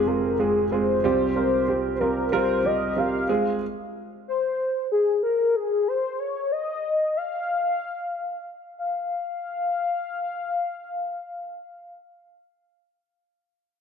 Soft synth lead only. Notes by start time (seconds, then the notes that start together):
0.07 A#4
0.39 G#4
0.71 C5
1.35 C5
1.95 C5
2.00 A#4
2.33 C5
2.66 D#5
2.98 F5
4.28 C5
4.92 G#4
5.23 A#4
5.56 G#4
5.88 C5
6.19 C#5
6.52 D#5
7.17 F5
8.78 F5